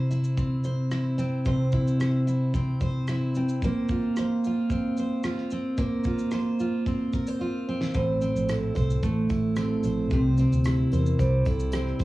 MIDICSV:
0, 0, Header, 1, 5, 480
1, 0, Start_track
1, 0, Tempo, 540541
1, 1293, Time_signature, 4, 2, 24, 8
1, 10692, End_track
2, 0, Start_track
2, 0, Title_t, "Vibraphone"
2, 0, Program_c, 0, 11
2, 7056, Note_on_c, 0, 72, 78
2, 7537, Note_on_c, 0, 69, 77
2, 7551, Note_off_c, 0, 72, 0
2, 8460, Note_off_c, 0, 69, 0
2, 8501, Note_on_c, 0, 69, 68
2, 8978, Note_on_c, 0, 67, 75
2, 8992, Note_off_c, 0, 69, 0
2, 9446, Note_off_c, 0, 67, 0
2, 9457, Note_on_c, 0, 67, 77
2, 9702, Note_off_c, 0, 67, 0
2, 9702, Note_on_c, 0, 70, 86
2, 9929, Note_on_c, 0, 72, 87
2, 9944, Note_off_c, 0, 70, 0
2, 10153, Note_off_c, 0, 72, 0
2, 10177, Note_on_c, 0, 69, 79
2, 10419, Note_on_c, 0, 67, 73
2, 10421, Note_off_c, 0, 69, 0
2, 10638, Note_off_c, 0, 67, 0
2, 10666, Note_on_c, 0, 67, 76
2, 10692, Note_off_c, 0, 67, 0
2, 10692, End_track
3, 0, Start_track
3, 0, Title_t, "Steel-string acoustic guitar"
3, 0, Program_c, 1, 25
3, 0, Note_on_c, 1, 48, 61
3, 0, Note_on_c, 1, 72, 54
3, 95, Note_on_c, 1, 64, 48
3, 332, Note_on_c, 1, 60, 46
3, 573, Note_off_c, 1, 72, 0
3, 576, Note_on_c, 1, 72, 53
3, 800, Note_off_c, 1, 64, 0
3, 811, Note_on_c, 1, 64, 54
3, 1045, Note_off_c, 1, 60, 0
3, 1049, Note_on_c, 1, 60, 51
3, 1285, Note_off_c, 1, 48, 0
3, 1296, Note_on_c, 1, 48, 67
3, 1298, Note_off_c, 1, 72, 0
3, 1301, Note_on_c, 1, 72, 57
3, 1532, Note_off_c, 1, 64, 0
3, 1543, Note_on_c, 1, 64, 49
3, 1772, Note_off_c, 1, 72, 0
3, 1775, Note_on_c, 1, 72, 52
3, 2007, Note_off_c, 1, 64, 0
3, 2018, Note_on_c, 1, 64, 50
3, 2258, Note_off_c, 1, 60, 0
3, 2261, Note_on_c, 1, 60, 50
3, 2497, Note_off_c, 1, 72, 0
3, 2500, Note_on_c, 1, 72, 56
3, 2733, Note_off_c, 1, 64, 0
3, 2744, Note_on_c, 1, 64, 55
3, 2984, Note_off_c, 1, 60, 0
3, 2988, Note_on_c, 1, 60, 48
3, 3217, Note_off_c, 1, 48, 0
3, 3233, Note_on_c, 1, 58, 75
3, 3234, Note_off_c, 1, 72, 0
3, 3238, Note_on_c, 1, 72, 63
3, 3268, Note_off_c, 1, 64, 0
3, 3469, Note_on_c, 1, 65, 52
3, 3716, Note_off_c, 1, 72, 0
3, 3720, Note_on_c, 1, 72, 56
3, 3943, Note_off_c, 1, 65, 0
3, 3965, Note_on_c, 1, 65, 52
3, 4182, Note_off_c, 1, 60, 0
3, 4185, Note_on_c, 1, 60, 49
3, 4429, Note_off_c, 1, 72, 0
3, 4432, Note_on_c, 1, 72, 56
3, 4644, Note_off_c, 1, 65, 0
3, 4654, Note_on_c, 1, 65, 56
3, 4899, Note_off_c, 1, 60, 0
3, 4902, Note_on_c, 1, 60, 48
3, 5124, Note_off_c, 1, 58, 0
3, 5134, Note_on_c, 1, 58, 71
3, 5138, Note_off_c, 1, 72, 0
3, 5142, Note_on_c, 1, 72, 58
3, 5376, Note_off_c, 1, 65, 0
3, 5389, Note_on_c, 1, 65, 49
3, 5622, Note_off_c, 1, 72, 0
3, 5626, Note_on_c, 1, 72, 56
3, 5852, Note_off_c, 1, 65, 0
3, 5863, Note_on_c, 1, 65, 50
3, 6094, Note_off_c, 1, 60, 0
3, 6098, Note_on_c, 1, 60, 52
3, 6341, Note_off_c, 1, 72, 0
3, 6344, Note_on_c, 1, 70, 56
3, 6464, Note_off_c, 1, 70, 0
3, 6464, Note_on_c, 1, 72, 47
3, 6567, Note_off_c, 1, 65, 0
3, 6578, Note_on_c, 1, 65, 50
3, 6821, Note_off_c, 1, 60, 0
3, 6824, Note_on_c, 1, 60, 51
3, 7047, Note_off_c, 1, 72, 0
3, 7054, Note_on_c, 1, 45, 75
3, 7056, Note_off_c, 1, 58, 0
3, 7058, Note_on_c, 1, 72, 59
3, 7106, Note_off_c, 1, 65, 0
3, 7293, Note_off_c, 1, 60, 0
3, 7296, Note_on_c, 1, 60, 47
3, 7541, Note_on_c, 1, 64, 50
3, 7767, Note_off_c, 1, 72, 0
3, 7771, Note_on_c, 1, 72, 56
3, 8016, Note_on_c, 1, 57, 58
3, 8252, Note_off_c, 1, 64, 0
3, 8256, Note_on_c, 1, 64, 51
3, 8492, Note_off_c, 1, 60, 0
3, 8496, Note_on_c, 1, 60, 57
3, 8744, Note_off_c, 1, 72, 0
3, 8747, Note_on_c, 1, 72, 59
3, 8973, Note_off_c, 1, 45, 0
3, 8997, Note_off_c, 1, 72, 0
3, 8997, Note_on_c, 1, 48, 73
3, 9000, Note_on_c, 1, 72, 59
3, 9023, Note_off_c, 1, 57, 0
3, 9228, Note_off_c, 1, 60, 0
3, 9232, Note_on_c, 1, 60, 51
3, 9463, Note_off_c, 1, 64, 0
3, 9466, Note_on_c, 1, 64, 52
3, 9693, Note_off_c, 1, 72, 0
3, 9704, Note_on_c, 1, 72, 59
3, 9937, Note_on_c, 1, 55, 55
3, 10179, Note_off_c, 1, 64, 0
3, 10182, Note_on_c, 1, 64, 51
3, 10405, Note_off_c, 1, 60, 0
3, 10416, Note_on_c, 1, 60, 59
3, 10639, Note_off_c, 1, 72, 0
3, 10650, Note_on_c, 1, 72, 61
3, 10692, Note_off_c, 1, 48, 0
3, 10692, Note_off_c, 1, 55, 0
3, 10692, Note_off_c, 1, 60, 0
3, 10692, Note_off_c, 1, 64, 0
3, 10692, Note_off_c, 1, 72, 0
3, 10692, End_track
4, 0, Start_track
4, 0, Title_t, "Fingered electric bass"
4, 0, Program_c, 2, 33
4, 7059, Note_on_c, 2, 33, 90
4, 7353, Note_off_c, 2, 33, 0
4, 7417, Note_on_c, 2, 34, 69
4, 7712, Note_off_c, 2, 34, 0
4, 7783, Note_on_c, 2, 36, 77
4, 7977, Note_off_c, 2, 36, 0
4, 8022, Note_on_c, 2, 33, 81
4, 8217, Note_off_c, 2, 33, 0
4, 8258, Note_on_c, 2, 33, 73
4, 8650, Note_off_c, 2, 33, 0
4, 8734, Note_on_c, 2, 34, 74
4, 8931, Note_off_c, 2, 34, 0
4, 8979, Note_on_c, 2, 36, 96
4, 9272, Note_off_c, 2, 36, 0
4, 9338, Note_on_c, 2, 38, 70
4, 9631, Note_off_c, 2, 38, 0
4, 9698, Note_on_c, 2, 40, 82
4, 9892, Note_off_c, 2, 40, 0
4, 9939, Note_on_c, 2, 36, 82
4, 10133, Note_off_c, 2, 36, 0
4, 10180, Note_on_c, 2, 36, 86
4, 10569, Note_off_c, 2, 36, 0
4, 10654, Note_on_c, 2, 31, 72
4, 10692, Note_off_c, 2, 31, 0
4, 10692, End_track
5, 0, Start_track
5, 0, Title_t, "Drums"
5, 99, Note_on_c, 9, 82, 41
5, 188, Note_off_c, 9, 82, 0
5, 213, Note_on_c, 9, 82, 43
5, 301, Note_off_c, 9, 82, 0
5, 333, Note_on_c, 9, 36, 78
5, 335, Note_on_c, 9, 82, 63
5, 421, Note_off_c, 9, 36, 0
5, 423, Note_off_c, 9, 82, 0
5, 568, Note_on_c, 9, 82, 42
5, 656, Note_off_c, 9, 82, 0
5, 810, Note_on_c, 9, 82, 62
5, 813, Note_on_c, 9, 37, 92
5, 899, Note_off_c, 9, 82, 0
5, 902, Note_off_c, 9, 37, 0
5, 1053, Note_on_c, 9, 82, 46
5, 1142, Note_off_c, 9, 82, 0
5, 1291, Note_on_c, 9, 82, 59
5, 1295, Note_on_c, 9, 36, 94
5, 1379, Note_off_c, 9, 82, 0
5, 1384, Note_off_c, 9, 36, 0
5, 1526, Note_on_c, 9, 82, 43
5, 1536, Note_on_c, 9, 36, 83
5, 1615, Note_off_c, 9, 82, 0
5, 1625, Note_off_c, 9, 36, 0
5, 1665, Note_on_c, 9, 82, 42
5, 1754, Note_off_c, 9, 82, 0
5, 1781, Note_on_c, 9, 82, 63
5, 1785, Note_on_c, 9, 37, 93
5, 1869, Note_off_c, 9, 82, 0
5, 1873, Note_off_c, 9, 37, 0
5, 2023, Note_on_c, 9, 82, 41
5, 2111, Note_off_c, 9, 82, 0
5, 2255, Note_on_c, 9, 36, 78
5, 2258, Note_on_c, 9, 82, 64
5, 2344, Note_off_c, 9, 36, 0
5, 2347, Note_off_c, 9, 82, 0
5, 2493, Note_on_c, 9, 82, 43
5, 2495, Note_on_c, 9, 36, 78
5, 2582, Note_off_c, 9, 82, 0
5, 2583, Note_off_c, 9, 36, 0
5, 2732, Note_on_c, 9, 82, 63
5, 2735, Note_on_c, 9, 37, 93
5, 2821, Note_off_c, 9, 82, 0
5, 2824, Note_off_c, 9, 37, 0
5, 2975, Note_on_c, 9, 82, 42
5, 3063, Note_off_c, 9, 82, 0
5, 3097, Note_on_c, 9, 82, 42
5, 3186, Note_off_c, 9, 82, 0
5, 3217, Note_on_c, 9, 36, 102
5, 3219, Note_on_c, 9, 82, 56
5, 3305, Note_off_c, 9, 36, 0
5, 3308, Note_off_c, 9, 82, 0
5, 3450, Note_on_c, 9, 82, 42
5, 3456, Note_on_c, 9, 36, 88
5, 3539, Note_off_c, 9, 82, 0
5, 3545, Note_off_c, 9, 36, 0
5, 3697, Note_on_c, 9, 82, 66
5, 3701, Note_on_c, 9, 37, 97
5, 3786, Note_off_c, 9, 82, 0
5, 3790, Note_off_c, 9, 37, 0
5, 3943, Note_on_c, 9, 82, 43
5, 4032, Note_off_c, 9, 82, 0
5, 4173, Note_on_c, 9, 36, 76
5, 4175, Note_on_c, 9, 82, 60
5, 4262, Note_off_c, 9, 36, 0
5, 4264, Note_off_c, 9, 82, 0
5, 4415, Note_on_c, 9, 82, 40
5, 4504, Note_off_c, 9, 82, 0
5, 4650, Note_on_c, 9, 82, 67
5, 4653, Note_on_c, 9, 37, 93
5, 4739, Note_off_c, 9, 82, 0
5, 4742, Note_off_c, 9, 37, 0
5, 4777, Note_on_c, 9, 37, 29
5, 4865, Note_off_c, 9, 37, 0
5, 4888, Note_on_c, 9, 82, 43
5, 4977, Note_off_c, 9, 82, 0
5, 5129, Note_on_c, 9, 82, 60
5, 5132, Note_on_c, 9, 36, 103
5, 5218, Note_off_c, 9, 82, 0
5, 5221, Note_off_c, 9, 36, 0
5, 5364, Note_on_c, 9, 82, 40
5, 5373, Note_on_c, 9, 36, 87
5, 5453, Note_off_c, 9, 82, 0
5, 5462, Note_off_c, 9, 36, 0
5, 5492, Note_on_c, 9, 82, 41
5, 5581, Note_off_c, 9, 82, 0
5, 5605, Note_on_c, 9, 82, 67
5, 5609, Note_on_c, 9, 37, 93
5, 5693, Note_off_c, 9, 82, 0
5, 5697, Note_off_c, 9, 37, 0
5, 5856, Note_on_c, 9, 82, 41
5, 5945, Note_off_c, 9, 82, 0
5, 6095, Note_on_c, 9, 36, 72
5, 6096, Note_on_c, 9, 82, 59
5, 6183, Note_off_c, 9, 36, 0
5, 6184, Note_off_c, 9, 82, 0
5, 6332, Note_on_c, 9, 82, 42
5, 6335, Note_on_c, 9, 36, 81
5, 6421, Note_off_c, 9, 82, 0
5, 6424, Note_off_c, 9, 36, 0
5, 6455, Note_on_c, 9, 82, 57
5, 6544, Note_off_c, 9, 82, 0
5, 6935, Note_on_c, 9, 38, 77
5, 7023, Note_off_c, 9, 38, 0
5, 7053, Note_on_c, 9, 82, 59
5, 7057, Note_on_c, 9, 36, 103
5, 7063, Note_on_c, 9, 54, 26
5, 7141, Note_off_c, 9, 82, 0
5, 7146, Note_off_c, 9, 36, 0
5, 7152, Note_off_c, 9, 54, 0
5, 7294, Note_on_c, 9, 82, 42
5, 7297, Note_on_c, 9, 54, 29
5, 7383, Note_off_c, 9, 82, 0
5, 7386, Note_off_c, 9, 54, 0
5, 7426, Note_on_c, 9, 82, 45
5, 7515, Note_off_c, 9, 82, 0
5, 7536, Note_on_c, 9, 54, 72
5, 7540, Note_on_c, 9, 82, 68
5, 7544, Note_on_c, 9, 37, 100
5, 7625, Note_off_c, 9, 54, 0
5, 7629, Note_off_c, 9, 82, 0
5, 7633, Note_off_c, 9, 37, 0
5, 7777, Note_on_c, 9, 54, 42
5, 7781, Note_on_c, 9, 36, 74
5, 7787, Note_on_c, 9, 82, 42
5, 7866, Note_off_c, 9, 54, 0
5, 7869, Note_off_c, 9, 36, 0
5, 7876, Note_off_c, 9, 82, 0
5, 7906, Note_on_c, 9, 82, 49
5, 7995, Note_off_c, 9, 82, 0
5, 8016, Note_on_c, 9, 54, 45
5, 8020, Note_on_c, 9, 36, 77
5, 8021, Note_on_c, 9, 82, 61
5, 8105, Note_off_c, 9, 54, 0
5, 8109, Note_off_c, 9, 36, 0
5, 8110, Note_off_c, 9, 82, 0
5, 8253, Note_on_c, 9, 54, 46
5, 8257, Note_on_c, 9, 82, 42
5, 8259, Note_on_c, 9, 36, 85
5, 8342, Note_off_c, 9, 54, 0
5, 8346, Note_off_c, 9, 82, 0
5, 8348, Note_off_c, 9, 36, 0
5, 8491, Note_on_c, 9, 54, 81
5, 8492, Note_on_c, 9, 82, 66
5, 8495, Note_on_c, 9, 37, 100
5, 8580, Note_off_c, 9, 54, 0
5, 8581, Note_off_c, 9, 82, 0
5, 8584, Note_off_c, 9, 37, 0
5, 8732, Note_on_c, 9, 82, 45
5, 8735, Note_on_c, 9, 54, 44
5, 8821, Note_off_c, 9, 82, 0
5, 8824, Note_off_c, 9, 54, 0
5, 8975, Note_on_c, 9, 82, 64
5, 8977, Note_on_c, 9, 54, 27
5, 8978, Note_on_c, 9, 36, 105
5, 9064, Note_off_c, 9, 82, 0
5, 9065, Note_off_c, 9, 54, 0
5, 9067, Note_off_c, 9, 36, 0
5, 9212, Note_on_c, 9, 82, 44
5, 9216, Note_on_c, 9, 54, 31
5, 9301, Note_off_c, 9, 82, 0
5, 9305, Note_off_c, 9, 54, 0
5, 9347, Note_on_c, 9, 82, 42
5, 9436, Note_off_c, 9, 82, 0
5, 9450, Note_on_c, 9, 54, 70
5, 9459, Note_on_c, 9, 82, 70
5, 9463, Note_on_c, 9, 37, 109
5, 9539, Note_off_c, 9, 54, 0
5, 9548, Note_off_c, 9, 82, 0
5, 9552, Note_off_c, 9, 37, 0
5, 9694, Note_on_c, 9, 54, 45
5, 9708, Note_on_c, 9, 82, 45
5, 9783, Note_off_c, 9, 54, 0
5, 9796, Note_off_c, 9, 82, 0
5, 9822, Note_on_c, 9, 82, 50
5, 9910, Note_off_c, 9, 82, 0
5, 9939, Note_on_c, 9, 36, 77
5, 9941, Note_on_c, 9, 54, 49
5, 9944, Note_on_c, 9, 82, 69
5, 10028, Note_off_c, 9, 36, 0
5, 10030, Note_off_c, 9, 54, 0
5, 10033, Note_off_c, 9, 82, 0
5, 10170, Note_on_c, 9, 54, 49
5, 10179, Note_on_c, 9, 36, 82
5, 10179, Note_on_c, 9, 82, 44
5, 10259, Note_off_c, 9, 54, 0
5, 10267, Note_off_c, 9, 36, 0
5, 10268, Note_off_c, 9, 82, 0
5, 10297, Note_on_c, 9, 82, 58
5, 10386, Note_off_c, 9, 82, 0
5, 10407, Note_on_c, 9, 54, 78
5, 10416, Note_on_c, 9, 82, 67
5, 10419, Note_on_c, 9, 37, 108
5, 10496, Note_off_c, 9, 54, 0
5, 10505, Note_off_c, 9, 82, 0
5, 10508, Note_off_c, 9, 37, 0
5, 10542, Note_on_c, 9, 37, 30
5, 10631, Note_off_c, 9, 37, 0
5, 10651, Note_on_c, 9, 54, 47
5, 10655, Note_on_c, 9, 36, 88
5, 10656, Note_on_c, 9, 82, 46
5, 10692, Note_off_c, 9, 36, 0
5, 10692, Note_off_c, 9, 54, 0
5, 10692, Note_off_c, 9, 82, 0
5, 10692, End_track
0, 0, End_of_file